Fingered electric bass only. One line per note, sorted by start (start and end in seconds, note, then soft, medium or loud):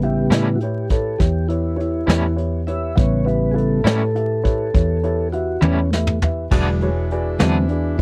0.00 0.27 A1 medium
0.30 1.15 A2 loud
1.20 2.04 E2 medium
2.08 2.92 E2 medium
2.97 3.81 A1 medium
3.84 4.69 A2 loud
4.75 5.59 E2 medium
5.62 6.46 E2 medium
6.51 7.36 E1 medium
7.41 8.02 E2 medium